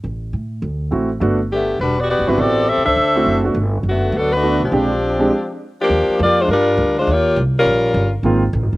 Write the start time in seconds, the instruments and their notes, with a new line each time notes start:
0.04 upright bass A1
0.33 upright bass A2
0.62 upright bass D2
0.91 upright bass A1, grand piano A3 C4 E4 F#4
1.20 upright bass G1, grand piano A3 B3 D4 F#4
1.52 saxophone section D3 A3 B3 G4
1.78 upright bass E1, saxophone section G3 D4 F#4 A#4 B4
1.99 saxophone section B3 F#4 G4 D5
2.09 saxophone section B3 F#4 G4 D5
2.19 upright bass F#1
2.27 upright bass G1, saxophone section G3 D4 F#4 B4, grand piano B3 C4 E4 F#4
2.38 upright bass A1, saxophone section C4 G4 A4 D5
2.68 saxophone section C4 G4 A4 E5
2.77 upright bass C2
2.85 upright bass C#2, saxophone section D4 A4 C5 E5
2.96 upright bass D2
3.15 grand piano A3 C4 E4 F#4
3.25 upright bass F#1
3.44 grand piano A3 B3 D4 F#4
3.54 upright bass G1
3.83 upright bass F#1
3.88 saxophone section D3 A3 B3 F#4
4.12 upright bass D2, saxophone section F#3 B3 D4 A4
4.33 saxophone section A3 D4 F#4 B4
4.42 grand piano A3 B3 D4 F#4
4.60 upright bass B1, saxophone section F3 C4 D4 G4
4.71 upright bass A#1, grand piano G#3 C4 D4 G4
5.19 grand piano G#3 C4 D4 G4
5.80 saxophone section F3 A#3 D4 G4
5.89 upright bass D#2
6.08 muted upright bass stroke
6.19 upright bass F2, saxophone section A#3 F4 G4 D5
6.39 saxophone section G#3 D4 F4 C5
6.48 upright bass G2, saxophone section G3 D4 F4 A#4
6.77 upright bass D2
6.97 saxophone section G#3 D4 F4 C5
7.07 upright bass D#2, saxophone section A#3 F4 G4 C#5
7.36 upright bass C2
7.58 saxophone section G3 C#4 F4 A#4
7.65 upright bass A#1
7.94 upright bass G1
8.23 upright bass G#1, grand piano D#3 G#3 A#3 C4 F4
8.53 upright bass A1
8.62 upright bass G#1
8.73 upright bass F1